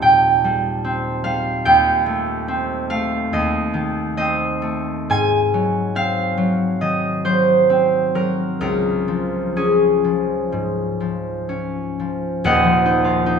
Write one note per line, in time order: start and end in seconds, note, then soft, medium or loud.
0.00 1.65 D#2 medium
0.00 1.70 A#2 soft
0.00 0.97 F3 soft
0.00 0.43 G3 medium
0.00 0.83 C4 soft
0.00 2.21 D#5 medium
0.00 1.23 F5 medium
0.00 1.64 G5 medium
0.00 0.59 A5 loud
0.44 1.23 G3 medium
0.84 2.47 C4 medium
1.24 5.14 G3 soft
1.24 2.89 F5 medium
1.65 3.32 D#2 medium
1.65 5.13 G5 medium
2.06 2.89 A3 medium
2.48 4.17 C4 medium
2.90 4.61 A3 medium
2.90 5.13 F5 medium
3.33 5.14 D#2 medium
3.33 4.16 D#5 medium
3.74 5.13 D#3 soft
4.17 5.94 C4 medium
4.17 6.80 D#5 medium
4.62 5.13 A3 medium
5.10 8.66 G#2 medium
5.10 9.01 G#5 loud
5.54 6.36 F#3 medium
5.95 7.68 C4 soft
5.95 7.43 F5 medium
6.37 7.24 F#3 soft
6.81 8.65 D#3 soft
6.81 10.71 D#5 medium
7.25 8.14 F#3 soft
7.25 8.65 C5 medium
7.70 8.65 C4 soft
8.15 8.65 F#3 soft
8.15 8.60 A#4 medium
8.61 12.48 C#2 medium
8.61 12.45 A#4 medium
9.08 10.03 F3 soft
9.56 11.48 C#4 soft
9.56 12.48 G#4 medium
10.04 10.99 F3 soft
10.52 12.49 G#2 soft
11.00 11.98 F3 soft
11.49 12.49 C#4 soft
12.00 12.63 F3 soft
12.44 13.39 D#1 medium
12.44 13.39 D#2 medium
12.44 13.39 A#4 medium
12.44 13.39 D#5 medium
12.44 13.39 F#5 loud
12.64 13.39 F3 medium
12.86 13.25 D#4 medium
13.04 13.39 F4 medium
13.26 13.39 D#4 medium